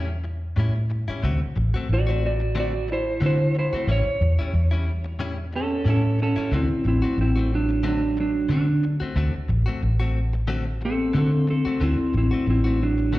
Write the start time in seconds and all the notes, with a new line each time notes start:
Already playing: E2
0.09 muted clean electric guitar stroke
0.24 muted clean electric guitar stroke
0.56 A2 G3 C#4 E4
0.75 muted clean electric guitar stroke
0.90 muted clean electric guitar stroke
1.08 G3 C#4 E4, muted fingered electric bass stroke
1.23 D2 D3 A3 C4 F#4
1.41 muted clean electric guitar stroke, muted fingered electric bass stroke
1.56 A1, muted clean electric guitar stroke
1.74 A3 C4 F#4
1.89 A1, muted clean electric guitar stroke
1.93 F#4 D5
2.07 A3 C4 F#4
2.26 F#4 D5
2.40 muted clean electric guitar stroke
2.55 D3 A3 C4 F#4
2.59 F#4 D5
2.74 muted clean electric guitar stroke
2.88 E4, muted clean electric guitar stroke
2.93 C5
3.21 D3 A3 C4 F#4
3.26 E4 C5
3.39 muted clean electric guitar stroke
3.55 E4, muted clean electric guitar stroke
3.59 C5
3.73 A3 C4 F#4, muted fingered electric bass stroke
3.87 A1 A2 G3 C#4 E4
3.91 C#5
4.06 muted clean electric guitar stroke
4.21 E2, muted clean electric guitar stroke
4.39 G3 C#4 E4
4.54 E2, muted clean electric guitar stroke
4.71 G3 C#4 E4
5.04 muted clean electric guitar stroke
5.19 A2 G3 C#4 E4
5.38 muted clean electric guitar stroke
5.52 C#4 A4, muted clean electric guitar stroke
5.85 A2 G3 C#4 E4
5.89 C#4 A4
6.04 muted clean electric guitar stroke
6.19 C#4, muted clean electric guitar stroke
6.23 A4
6.36 G3 C#4 E4, muted fingered electric bass stroke
6.51 D2 D3 A3 C4 F#4
6.56 E4
6.70 muted fingered electric bass stroke, muted clean electric guitar stroke
6.84 A1 C4 E4, muted clean electric guitar stroke
7.02 A3 C4 F#4
7.18 A1 C4, muted clean electric guitar stroke
7.22 E4
7.36 A3 C4 F#4
7.54 F#3 D4
7.69 muted clean electric guitar stroke
7.83 D3 F#3 A3 C4 F#4
7.88 D4
8.02 muted clean electric guitar stroke
8.17 F#3 D4, muted clean electric guitar stroke
8.49 D3 A3 C4 F#4
8.54 D4
8.68 muted clean electric guitar stroke
8.83 muted clean electric guitar stroke
9.00 A3 C4 F#4, muted fingered electric bass stroke
9.16 D2 D3 A3 C4 F#4
9.34 muted clean electric guitar stroke, muted fingered electric bass stroke
9.49 A1, muted clean electric guitar stroke
9.66 A3 C4 F#4
9.82 A1, muted clean electric guitar stroke
10.00 A3 C4 F#4
10.33 muted clean electric guitar stroke
10.47 D3 A3 C4 F#4
10.66 muted clean electric guitar stroke
10.81 C4, muted clean electric guitar stroke
10.85 A4
11.13 D3 A3 C4 F#4
11.18 C4 A4
11.32 muted clean electric guitar stroke
11.47 C4 A4, muted clean electric guitar stroke
11.65 A3 C4 F#4, muted fingered electric bass stroke
11.80 D2 D3 A3 C4 E4 F#4
11.99 muted clean electric guitar stroke, muted fingered electric bass stroke
12.13 A1, muted clean electric guitar stroke
12.17 C4 E4
12.31 A3 C4 F#4
12.46 A1 C4 E4, muted clean electric guitar stroke
12.64 A3 C4 F#4
12.83 F#3 D4
12.98 muted clean electric guitar stroke
13.13 D3 A3 C4 F#4